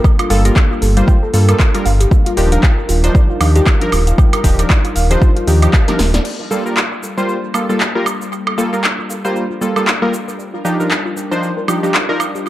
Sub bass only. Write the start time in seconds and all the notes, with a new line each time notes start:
0.30 G1
0.82 G1
1.34 G2
1.85 G1
2.37 D#1
2.89 D#1
3.41 D#2
3.92 D#1
4.44 D#1
4.96 D#1
5.47 D#2
5.99 D#1